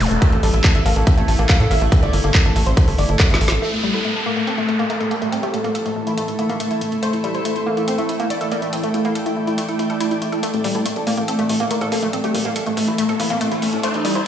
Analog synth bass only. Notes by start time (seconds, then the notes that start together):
0.00 E1
0.11 E1
0.32 A1
0.43 A1
0.54 A1
0.75 A1
0.86 A1
0.96 A1
1.18 A1
1.28 A1
1.39 A1
1.60 A2
1.71 A1
1.81 A1
2.03 G1
2.13 G1
2.24 G1
2.45 A1
2.56 A1
2.66 A1
2.88 G1
2.98 G1
3.09 G1
3.30 A1
3.41 A1
3.52 A1
10.54 A1
10.64 A1
10.75 A1
10.96 A1
11.07 A1
11.18 A1
11.39 A1
11.49 A1
11.60 A1
11.81 A2
11.92 A1
12.03 A1
12.24 G1
12.35 G1
12.45 G1
12.66 A1
12.77 A1
12.88 A1
13.09 G1
13.20 G1
13.30 G1
13.52 E1
13.62 E1
13.73 E1
13.94 A1
14.05 A1
14.15 A1